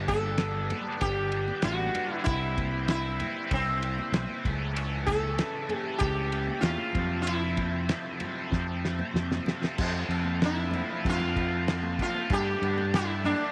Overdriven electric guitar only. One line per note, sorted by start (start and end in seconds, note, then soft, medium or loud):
0.00 0.38 G2 medium
0.08 0.39 D3 medium
0.08 0.26 G3 medium
0.08 0.25 B3 medium
0.08 0.22 D4 medium
0.24 0.41 G3 medium
0.24 0.41 B3 medium
0.24 0.41 D4 medium
0.39 1.02 G2 medium
0.39 0.69 D3 medium
0.39 0.70 G3 medium
0.39 0.72 B3 medium
0.39 0.72 D4 medium
0.70 1.17 D3 medium
0.70 0.88 G3 medium
0.70 0.88 B3 medium
0.70 0.85 D4 medium
0.86 1.33 G3 medium
0.86 1.34 B3 medium
0.86 1.35 D4 medium
1.33 1.64 D3 medium
1.33 1.51 G3 medium
1.33 1.51 B3 medium
1.33 1.47 D4 medium
1.49 1.65 G3 medium
1.49 1.66 B3 medium
1.49 1.66 D4 medium
1.64 2.11 G2 medium
1.64 1.94 D3 medium
1.64 1.80 G3 medium
1.64 1.80 B3 medium
1.64 1.78 D4 medium
1.79 1.95 G3 medium
1.79 1.96 B3 medium
1.79 1.96 D4 medium
1.95 2.24 D3 medium
1.95 2.12 G3 medium
1.95 2.11 B3 medium
1.95 2.10 D4 medium
2.11 2.26 G3 medium
2.11 2.28 B3 medium
2.11 2.25 D4 medium
2.26 2.56 C3 medium
2.26 2.57 G3 medium
2.26 2.58 C4 loud
2.26 2.59 E4 medium
2.57 2.88 C3 medium
2.57 2.75 G3 medium
2.57 2.73 C4 medium
2.57 2.72 E4 medium
2.72 2.88 G3 medium
2.72 2.90 C4 medium
2.72 2.91 E4 medium
2.89 3.18 C3 medium
2.89 3.20 G3 medium
2.89 3.21 C4 medium
2.89 3.23 E4 loud
3.19 3.67 C3 medium
3.19 3.37 G3 medium
3.19 3.35 C4 medium
3.19 3.35 E4 medium
3.35 3.82 G3 medium
3.35 3.84 C4 medium
3.35 3.84 E4 medium
3.83 4.13 C3 medium
3.83 4.00 G3 medium
3.83 3.98 C4 medium
3.83 3.97 E4 medium
3.98 4.14 G3 medium
3.98 4.15 C4 medium
3.98 4.17 E4 medium
4.14 4.44 C3 medium
4.14 4.32 G3 medium
4.14 4.31 C4 medium
4.14 4.30 E4 loud
4.30 4.45 G3 medium
4.30 4.45 C4 medium
4.30 4.47 E4 medium
4.45 4.75 C#3 medium
4.45 4.63 E3 loud
4.45 4.62 A3 loud
4.45 4.59 C#4 loud
4.61 4.76 E3 medium
4.61 4.77 A3 medium
4.61 4.78 C#4 medium
4.76 5.07 C#3 medium
4.76 5.09 E3 medium
4.76 5.10 A3 medium
4.76 5.10 C#4 medium
5.09 5.37 C#3 medium
5.09 5.25 E3 medium
5.09 5.24 A3 medium
5.09 5.22 C#4 medium
5.23 5.39 E3 medium
5.23 5.40 A3 medium
5.23 5.40 C#4 medium
5.39 5.68 C#3 medium
5.39 5.70 E3 medium
5.39 5.71 A3 medium
5.39 5.71 C#4 medium
5.69 6.17 C#3 medium
5.69 5.87 E3 medium
5.69 5.86 A3 medium
5.69 5.84 C#4 medium
5.85 6.32 E3 medium
5.85 6.34 A3 medium
5.85 6.34 C#4 medium
6.31 6.63 C#3 medium
6.31 6.50 E3 medium
6.31 6.49 A3 medium
6.31 6.47 C#4 medium
6.48 6.64 E3 medium
6.48 6.66 A3 medium
6.48 6.65 C#4 medium
6.64 6.94 C#3 medium
6.64 6.81 E3 medium
6.64 6.80 A3 medium
6.64 6.78 C#4 loud
6.79 6.95 E3 medium
6.79 6.97 A3 medium
6.79 6.94 C#4 medium
6.95 7.25 F2 loud
6.95 7.26 C3 loud
6.95 7.13 F3 loud
6.95 7.13 A3 loud
6.95 7.10 C4 loud
7.11 7.27 F3 medium
7.11 7.27 A3 medium
7.11 7.28 C4 medium
7.26 7.87 F2 medium
7.26 7.57 C3 medium
7.26 7.58 F3 medium
7.26 7.58 A3 medium
7.26 7.59 C4 medium
7.58 7.88 C3 medium
7.58 7.74 F3 medium
7.58 7.73 A3 medium
7.58 7.71 C4 medium
7.73 7.89 F3 medium
7.73 7.89 A3 medium
7.73 7.90 C4 medium
7.88 8.52 F2 loud
7.88 8.18 C3 medium
7.88 8.20 F3 medium
7.88 8.20 A3 loud
7.88 8.21 C4 loud
8.19 8.68 C3 medium
8.19 8.37 F3 medium
8.19 8.35 A3 medium
8.19 8.34 C4 medium
8.35 8.83 F3 medium
8.35 8.85 A3 medium
8.35 8.85 C4 medium
8.84 9.16 C3 medium
8.84 9.02 F3 medium
8.84 9.01 A3 medium
8.84 8.99 C4 medium
9.01 9.16 F3 medium
9.01 9.17 A3 medium
9.01 9.18 C4 medium
9.16 9.63 F2 medium
9.16 9.45 C3 medium
9.16 9.33 F3 medium
9.16 9.31 A3 loud
9.16 9.30 C4 loud
9.31 9.46 F3 medium
9.31 9.47 A3 medium
9.31 9.48 C4 medium
9.47 9.77 C3 medium
9.47 9.63 F3 medium
9.47 9.62 A3 medium
9.47 9.60 C4 medium
9.61 9.76 F3 medium
9.61 9.77 A3 medium
9.61 9.76 C4 medium
9.78 10.08 F3 medium
9.78 10.09 A3 loud
9.78 10.10 C4 loud
9.78 10.10 F4 medium
10.09 10.39 F3 medium
10.09 10.27 A3 medium
10.09 10.26 C4 medium
10.09 10.24 F4 medium
10.25 10.42 A3 medium
10.25 10.42 C4 medium
10.25 10.42 F4 medium
10.41 10.71 F3 loud
10.41 10.60 A3 loud
10.41 10.58 C4 loud
10.41 10.56 F4 loud
10.58 10.73 A3 medium
10.58 10.73 C4 medium
10.58 10.74 F4 medium
10.72 11.20 F3 medium
10.72 10.92 A3 medium
10.72 10.89 C4 medium
10.72 10.88 F4 medium
10.89 11.23 A3 medium
10.89 11.20 C4 medium
10.89 11.19 F4 medium
11.20 11.36 A3 medium
11.20 11.37 C4 medium
11.20 11.37 F4 medium
11.36 11.65 F3 medium
11.36 11.55 A3 medium
11.36 11.52 C4 medium
11.36 11.51 F4 medium
11.52 11.67 A3 medium
11.52 11.67 C4 medium
11.52 11.68 F4 medium
11.66 12.28 F3 loud
11.66 12.17 A3 loud
11.66 12.15 C4 medium
11.66 12.13 F4 loud
12.15 12.31 A3 medium
12.15 12.29 C4 medium
12.15 12.28 F4 medium
12.31 12.61 G3 loud
12.31 12.63 A3 loud
12.31 12.64 D4 loud
12.31 12.64 G4 medium
12.62 12.92 G3 medium
12.62 12.82 A3 medium
12.62 12.80 D4 medium
12.62 12.78 G4 medium
12.79 12.94 A3 medium
12.79 12.95 D4 medium
12.79 12.95 G4 medium
12.95 13.12 A3 medium
12.95 13.10 D4 loud
13.10 13.27 A3 medium
13.10 13.27 D4 medium
13.10 13.28 G4 medium
13.26 13.52 G3 medium
13.26 13.44 A3 medium
13.26 13.41 D4 medium
13.26 13.40 G4 medium
13.42 13.52 A3 medium
13.42 13.52 D4 medium
13.42 13.52 G4 medium